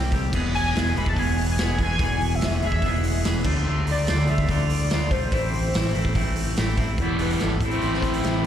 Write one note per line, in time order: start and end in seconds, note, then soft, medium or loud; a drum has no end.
0.00 0.11 C2 medium
0.00 0.11 C3 medium
0.00 0.12 G3 loud
0.00 0.12 C4 loud
0.00 0.12 G4 medium
0.12 0.33 C2 medium
0.12 0.32 C3 medium
0.12 0.33 G3 medium
0.12 0.33 C4 medium
0.12 0.33 G4 loud
0.12 kick medium
0.12 snare soft
0.12 open hi-hat medium
0.33 0.74 E1 medium
0.33 0.74 E2 loud
0.33 0.74 B2 loud
0.33 0.75 E3 loud
0.33 0.75 G#3 loud
0.33 0.76 B3 loud
0.33 0.77 G#4 loud
0.33 kick loud
0.33 crash loud
0.55 0.94 G#5 loud
0.55 open hi-hat medium
0.74 0.96 E1 medium
0.74 0.94 E2 medium
0.74 0.95 B2 medium
0.74 0.96 E3 medium
0.74 0.96 G#3 medium
0.74 0.97 B3 loud
0.74 0.96 G#4 medium
0.74 snare loud
0.74 open hi-hat medium
0.95 1.16 E1 loud
0.95 1.16 E2 medium
0.95 1.16 B2 medium
0.95 1.17 E3 medium
0.95 1.17 G#3 loud
0.95 1.18 B3 loud
0.95 1.18 G#4 medium
0.95 1.10 B5 loud
0.95 open hi-hat medium
1.06 1.20 A5 loud
1.06 kick loud
1.16 1.57 E1 medium
1.16 1.58 E2 loud
1.16 1.58 B2 loud
1.16 1.59 E3 loud
1.16 1.59 G#3 loud
1.16 1.59 B3 loud
1.16 1.60 G#4 loud
1.16 1.49 G#5 loud
1.16 kick medium
1.16 open hi-hat medium
1.38 open hi-hat medium
1.51 1.79 G#5 medium
1.58 1.79 E1 medium
1.58 1.78 E2 medium
1.58 1.78 B2 medium
1.58 1.79 E3 loud
1.58 1.79 G#3 medium
1.58 1.80 B3 loud
1.58 1.80 G#4 loud
1.58 snare loud
1.58 open hi-hat medium
1.79 1.99 E1 medium
1.79 1.99 E2 medium
1.79 1.99 B2 medium
1.79 2.01 E3 loud
1.79 2.00 G#3 medium
1.79 2.01 B3 loud
1.79 2.01 G#4 medium
1.79 kick medium
1.79 open hi-hat medium
1.83 2.37 G#5 loud
1.99 2.40 E1 medium
1.99 2.41 E2 loud
1.99 2.42 B2 loud
1.99 2.43 E3 loud
1.99 2.42 G#3 loud
1.99 2.43 B3 loud
1.99 2.44 G#4 loud
1.99 kick loud
1.99 open hi-hat medium
2.21 open hi-hat medium
2.35 2.65 E5 loud
2.41 2.62 E1 medium
2.41 2.61 E2 medium
2.41 2.62 B2 medium
2.41 2.63 E3 loud
2.41 2.62 G#3 medium
2.41 2.63 B3 medium
2.41 2.63 G#4 medium
2.41 snare loud
2.41 open hi-hat medium
2.62 2.82 E1 loud
2.62 2.82 E2 medium
2.62 2.83 B2 loud
2.62 2.84 E3 medium
2.62 2.84 G#3 loud
2.62 2.84 B3 loud
2.62 2.85 G#4 loud
2.62 open hi-hat medium
2.66 3.23 E5 loud
2.72 kick medium
2.82 3.23 E1 medium
2.82 3.23 E2 loud
2.82 3.24 B2 medium
2.82 3.25 E3 medium
2.82 3.24 G#3 loud
2.82 3.25 B3 loud
2.82 kick medium
2.82 open hi-hat medium
2.86 3.25 G#4 loud
3.04 open hi-hat medium
3.24 3.44 E1 medium
3.24 3.44 E2 medium
3.24 3.44 B2 medium
3.24 3.44 E3 medium
3.24 3.44 G#3 medium
3.24 3.45 B3 medium
3.24 3.45 G#4 medium
3.24 snare loud
3.24 open hi-hat medium
3.44 3.65 D2 loud
3.44 3.65 D3 loud
3.44 3.67 A3 loud
3.44 3.67 D4 loud
3.44 3.67 F4 loud
3.44 kick loud
3.44 snare soft
3.44 crash loud
3.66 4.07 D2 medium
3.66 4.06 D3 loud
3.66 4.08 A3 loud
3.66 4.07 D4 medium
3.66 4.08 F4 loud
3.87 open hi-hat medium
3.91 4.31 D5 loud
4.07 4.29 D2 loud
4.07 4.27 D3 medium
4.07 4.29 A3 medium
4.07 4.28 D4 medium
4.07 4.29 F4 loud
4.07 snare loud
4.07 open hi-hat medium
4.27 4.48 D2 loud
4.27 4.48 D3 medium
4.27 4.49 A3 medium
4.27 4.49 D4 loud
4.27 4.50 F4 loud
4.27 4.52 E5 loud
4.27 open hi-hat medium
4.38 kick medium
4.48 4.89 D2 medium
4.48 4.91 D3 loud
4.48 4.92 A3 loud
4.48 4.93 D4 loud
4.48 4.93 F4 loud
4.48 5.11 D5 loud
4.48 kick medium
4.48 open hi-hat medium
4.70 open hi-hat medium
4.90 5.10 D2 loud
4.90 5.09 D3 medium
4.90 5.11 A3 medium
4.90 5.11 D4 loud
4.90 5.12 F4 loud
4.90 snare loud
4.90 open hi-hat medium
5.11 5.31 B1 medium
5.11 5.31 D3 medium
5.11 5.31 A3 medium
5.11 5.31 D4 medium
5.11 5.32 F4 loud
5.11 6.53 C5 loud
5.11 kick medium
5.11 open hi-hat medium
5.32 5.72 A1 medium
5.32 5.73 A2 loud
5.32 5.74 E3 loud
5.32 5.74 A3 loud
5.32 5.75 C4 loud
5.32 5.75 E4 loud
5.32 kick loud
5.32 open hi-hat medium
5.53 open hi-hat medium
5.74 5.94 A1 medium
5.74 5.92 A2 medium
5.74 5.93 E3 medium
5.74 5.94 A3 medium
5.74 5.94 C4 medium
5.74 5.94 E4 loud
5.74 snare loud
5.74 open hi-hat medium
5.93 6.14 A1 loud
5.93 6.14 A2 medium
5.93 6.15 E3 medium
5.93 6.15 A3 medium
5.93 6.15 C4 medium
5.93 6.16 E4 loud
5.93 open hi-hat medium
6.05 kick loud
6.15 6.55 A1 medium
6.15 6.56 A2 medium
6.15 6.57 E3 loud
6.15 6.58 A3 loud
6.15 6.58 C4 loud
6.15 6.59 E4 loud
6.15 kick medium
6.15 open hi-hat medium
6.36 open hi-hat medium
6.57 6.77 A1 medium
6.57 6.75 A2 medium
6.57 6.76 E3 medium
6.57 6.76 A3 loud
6.57 6.77 C4 medium
6.57 6.77 E4 loud
6.57 snare loud
6.57 open hi-hat medium
6.77 6.97 A1 medium
6.77 6.97 A2 medium
6.77 6.97 E3 medium
6.77 6.97 A3 medium
6.77 6.98 C4 medium
6.77 6.98 E4 medium
6.77 kick medium
6.77 snare soft
6.77 open hi-hat medium
6.98 7.37 E1 medium
6.98 7.61 E2 medium
6.98 7.61 B2 medium
6.98 7.61 E3 medium
6.98 7.62 G3 medium
6.98 7.63 B3 medium
6.98 7.63 E4 medium
6.98 kick loud
6.98 closed hi-hat medium
7.19 7.29 B4 medium
7.19 closed hi-hat medium
7.30 7.35 B4 medium
7.30 closed hi-hat medium
7.40 7.60 G#1 medium
7.40 7.69 A4 medium
7.40 snare loud
7.40 closed hi-hat medium
7.61 7.80 A1 medium
7.61 8.46 A2 medium
7.61 8.46 E3 medium
7.61 8.46 A3 medium
7.61 8.46 C4 medium
7.61 8.46 E4 medium
7.61 kick loud
7.61 closed hi-hat medium
7.71 8.26 C5 loud
7.71 closed hi-hat medium
7.81 8.01 A1 medium
7.81 closed hi-hat medium
7.94 snare soft
8.02 8.22 A1 medium
8.02 kick medium
8.02 closed hi-hat medium
8.14 closed hi-hat medium
8.24 8.44 A1 medium
8.24 8.46 E5 loud
8.24 snare loud
8.24 closed hi-hat medium